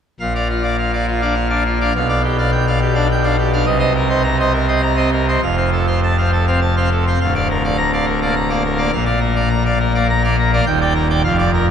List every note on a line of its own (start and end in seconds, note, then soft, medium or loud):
0.20 1.91 A#1 medium
0.20 1.91 A#2 medium
0.20 0.33 F5 medium
0.35 0.48 D5 soft
0.35 0.48 F5 medium
0.50 0.63 F4 soft
0.63 0.76 D5 medium
0.63 0.76 F5 medium
0.79 0.91 F5 medium
0.93 1.06 D5 soft
0.93 1.06 F5 medium
1.08 1.21 F4 medium
1.21 1.35 D4 soft
1.21 1.35 D5 medium
1.21 1.33 F5 medium
1.35 1.48 F5 medium
1.50 1.64 D4 medium
1.50 1.63 D5 medium
1.50 1.63 F5 medium
1.66 1.79 F4 soft
1.81 1.93 D4 soft
1.81 1.93 D5 medium
1.81 1.93 F5 medium
1.95 3.63 B1 medium
1.95 3.63 B2 medium
1.95 2.07 F5 medium
2.09 2.21 D5 medium
2.09 2.22 F5 medium
2.24 2.37 G4 medium
2.38 2.50 D5 medium
2.38 2.51 F5 medium
2.52 2.65 G5 medium
2.67 2.79 D5 medium
2.67 2.79 F5 medium
2.82 2.94 G4 medium
2.95 3.08 D4 medium
2.95 3.07 D5 medium
2.95 3.07 F5 medium
3.11 3.24 G5 medium
3.24 3.37 D4 medium
3.24 3.36 D5 medium
3.24 3.36 F5 medium
3.39 3.51 G4 medium
3.53 3.65 D4 medium
3.53 3.65 D5 medium
3.53 3.65 F5 medium
3.66 5.38 C2 medium
3.66 5.38 C3 medium
3.66 3.78 D#5 medium
3.79 3.92 C5 medium
3.79 3.93 D#5 medium
3.95 4.08 A#4 medium
4.10 4.22 C5 medium
4.10 4.22 D#5 medium
4.24 4.37 A#5 medium
4.40 4.52 C5 medium
4.40 4.52 D#5 medium
4.53 4.66 A#4 medium
4.68 4.82 C4 medium
4.68 4.81 C5 medium
4.68 4.81 D#5 medium
4.83 4.96 A#5 medium
4.97 5.10 C4 medium
4.97 5.10 C5 medium
4.97 5.10 D#5 medium
5.13 5.26 A#4 medium
5.28 5.41 C4 medium
5.28 5.41 C5 soft
5.28 5.41 D#5 medium
5.42 7.16 F1 medium
5.42 7.16 F2 medium
5.42 5.55 F5 medium
5.57 5.70 C5 soft
5.57 5.70 F5 medium
5.73 5.86 A4 soft
5.87 6.00 C5 soft
5.87 6.00 F5 soft
6.04 6.16 A5 medium
6.18 6.31 C5 soft
6.18 6.30 F5 soft
6.32 6.45 A4 soft
6.47 6.60 C4 soft
6.47 6.60 C5 medium
6.47 6.60 F5 medium
6.62 6.75 A5 medium
6.76 6.89 C4 soft
6.76 6.89 C5 soft
6.76 6.89 F5 medium
6.92 7.05 A4 soft
7.07 7.19 C4 soft
7.07 7.19 C5 soft
7.07 7.19 F5 soft
7.21 8.91 D1 medium
7.21 8.91 D2 medium
7.21 7.33 F5 medium
7.35 7.47 D5 soft
7.35 7.48 F5 medium
7.50 7.63 A#4 medium
7.64 7.77 D5 soft
7.64 7.76 F5 medium
7.78 7.91 A#5 medium
7.93 8.05 D5 soft
7.93 8.05 F5 medium
8.06 8.20 A#4 medium
8.22 8.35 A#3 medium
8.22 8.34 D5 medium
8.22 8.35 F5 medium
8.36 8.49 A#5 medium
8.49 8.63 A#3 medium
8.49 8.63 D5 medium
8.49 8.63 F5 medium
8.64 8.78 A#4 soft
8.78 8.91 A#3 soft
8.78 8.91 D5 soft
8.78 8.91 F5 medium
8.92 10.60 A#1 medium
8.92 10.61 A#2 medium
8.92 9.04 F5 medium
9.06 9.19 D5 soft
9.06 9.19 F5 medium
9.21 9.34 A#4 soft
9.35 9.49 D5 medium
9.35 9.48 F5 medium
9.50 9.63 A#5 medium
9.66 9.78 D5 medium
9.66 9.78 F5 medium
9.80 9.93 A#4 medium
9.95 10.08 A#3 medium
9.95 10.07 D5 medium
9.95 10.07 F5 medium
10.10 10.22 A#5 medium
10.24 10.36 A#3 medium
10.24 10.36 D5 medium
10.24 10.36 F5 medium
10.39 10.51 A#4 medium
10.53 10.64 A#3 medium
10.53 10.65 D5 medium
10.53 10.65 F5 medium
10.66 11.22 D#1 medium
10.66 11.22 D#2 medium
10.66 10.79 G5 medium
10.81 10.93 D5 medium
10.81 10.93 G5 medium
10.95 11.08 A#4 medium
11.10 11.22 D5 medium
11.10 11.22 G5 medium
11.24 11.71 F1 medium
11.24 11.71 F2 medium
11.24 11.36 F5 medium
11.38 11.51 D5 medium
11.38 11.51 F5 medium
11.54 11.66 A#4 medium